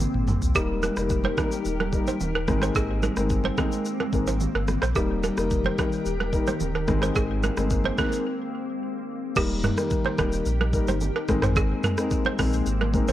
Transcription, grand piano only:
0.55 G3 A#3 D#4 A#4
0.97 G3 A#3 D#4 A#4
1.37 G3 A#3 D#4 A#4
1.92 G3 A#3 D#4 A#4
2.48 G#3 C4 D#4 A#4
3.17 G#3 C4 D#4 A#4
3.58 G#3 C4 D#4 A#4
4.13 G#3 C4 D#4 A#4
4.95 G3 A#3 D#4 A#4
5.37 G3 A#3 D#4 A#4
5.78 G3 A#3 D#4 A#4
6.33 G3 A#3 D#4 A#4
6.88 G#3 C4 D#4 A#4
7.57 G#3 C4 D#4 A#4
7.98 G#3 C4 D#4 A#4
9.35 G3 A#3 D#4 A#4
9.77 G3 A#3 D#4 A#4
10.18 G3 A#3 D#4 A#4
10.73 G3 A#3 D#4 A#4
11.28 G#3 C4 D#4 A#4
11.98 G#3 C4 D#4 A#4
12.38 G#3 C4 D#4 A#4
12.93 G#3 C4 D#4 A#4

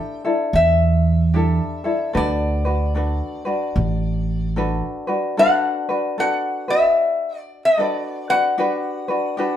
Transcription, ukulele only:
Already playing: D4 E4 G4 A4
0.25 D4 E4 A4
1.34 D4 E4 G4 A4
1.84 D4 E4 A4
2.13 D4 F#4 A4 B4
2.65 D4 F#4 B4
2.94 D4 F#4 A4 B4
3.45 D4 F#4 B4
4.56 D4 F#4 A4 B4
5.07 D4 F#4 B4
5.37 D4 F#4 A4 B4
5.89 D4 F#4 B4
6.18 D4 F#4 A4 B4
6.68 D4 F#4 B4
7.78 D4 F#4 A4 B4
8.30 D4 F#4 B4
8.58 D4 F#4 G4 B4
9.08 D4 F#4 B4
9.37 D4 F#4 G4 B4

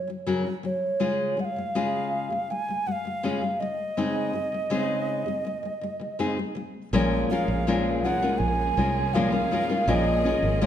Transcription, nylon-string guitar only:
0.07 C#3 F#3
0.26 C#3 F#3 C#4 F#4 A#4
0.44 C#3 F#3
0.63 C#3 F#3
1.00 C#3 G#3 C#4 F4 G#4
1.37 C#3 G#3
1.56 C#3 G#3
1.75 C#3 G#3 C#4 F4 G#4
2.30 C#3 G#3
2.50 C#3 G#3
2.68 C#3 G#3
2.86 C#3 G#3
3.05 C#3 G#3
3.23 C#3 G#3 C#4 F4 G#4
3.41 C#3 G#3
3.60 C#3 G#3
3.97 C#3 G#3 C4 D#4 G#4
4.33 C#3 G#3
4.52 C#3 G#3
4.70 C#3 G#3 C4 D#4 G#4
5.26 C#3 G#3
5.45 C#3 G#3
5.63 C#3 G#3
5.81 C#3 G#3
6.00 C#3 G#3
6.19 C#3 G#3 C4 D#4 G#4
6.37 C#3 G#3
6.55 C#3 G#3
6.93 A#2 F3 G#3 C#4 F4 A#4
7.31 G#3 C#4 F4 A#4
7.67 A#2 F3 G#3 C#4 F4 A#4
8.04 G#3 C#4 F4 A#4
8.22 G#3 C#4 F4 A#4
8.77 G#3 C#4 F4 A#4
9.14 A#2 F3 G#3 C#4 F4 A#4
9.32 G#3 C#4 F4 A#4
9.51 G#3 C#4 F4 A#4
9.69 G#3 C#4 F4 A#4
9.88 A#2 F3 G#3 C#4 F4 A#4
10.24 G#3 C#4 F4 A#4
10.61 A#2 F3 G#3 C#4 F4 A#4

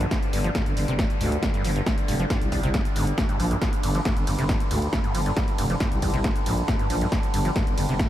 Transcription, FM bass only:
0.33 G1
0.66 G1
0.77 G1
0.88 G1
1.21 D2
1.64 G1
2.08 F1
2.41 C2
2.52 C2
2.63 C2
2.96 G1
3.40 A#1
3.83 G1
4.17 G1
4.27 G1
4.38 G1
4.71 D2
5.15 G1
5.59 F1
5.92 C2
6.02 C2
6.14 C2
6.46 A#1
6.90 A#1
7.34 G1
7.67 G1
7.78 G1
7.89 G1

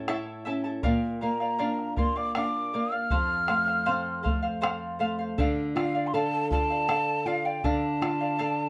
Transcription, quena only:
1.22 A#5
1.98 C6
2.16 D6
2.36 D6
2.93 F6
5.76 F5
6.07 C6
6.14 A5
6.51 A5
7.26 F5
7.45 G5
7.64 A5

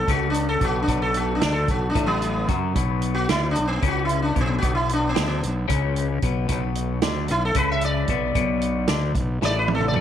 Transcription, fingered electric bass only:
0.08 C#2
0.61 B1
0.88 B1
1.44 D2
1.68 B1
1.95 A1
2.49 F#2
2.75 B1
3.30 D2
3.57 B1
3.82 C#2
4.36 B1
4.63 B1
5.16 D2
5.43 B1
5.70 C#2
6.23 B1
6.50 B1
7.03 D2
7.31 B1
7.55 C#2
8.09 B1
8.35 B1
8.89 D2
9.15 B1
9.42 A1
9.96 F#2

